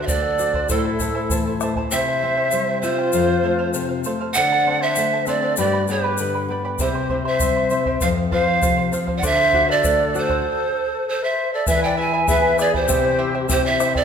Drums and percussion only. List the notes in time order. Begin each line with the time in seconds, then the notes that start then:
0.08 bombo low, shaker
0.39 shaker
0.54 bombo low
0.69 bombo low, shaker
0.99 bombo low, shaker
1.30 bombo low, shaker
1.61 bombo rim, shaker
1.76 bombo low
1.91 shaker
2.51 shaker
2.83 shaker
3.13 shaker
3.74 shaker
4.04 shaker
4.34 shaker
4.95 shaker
5.26 shaker
5.57 shaker
5.88 shaker
6.18 shaker
6.79 bombo low, shaker
7.09 bombo low
7.40 bombo low, shaker
7.70 shaker
7.86 bombo low
8.01 bombo low, shaker
8.31 bombo low
8.62 bombo low, shaker
8.93 shaker
9.08 bombo low
9.22 bombo low, shaker
9.53 bombo low
9.84 bombo low, shaker
10.15 shaker
10.29 bombo low
11.67 bombo low, shaker
12.28 bombo low, shaker
12.59 bombo rim, shaker
12.74 bombo low
12.88 bombo low, shaker
13.49 bombo low, shaker
13.80 bombo rim, shaker
13.95 bombo low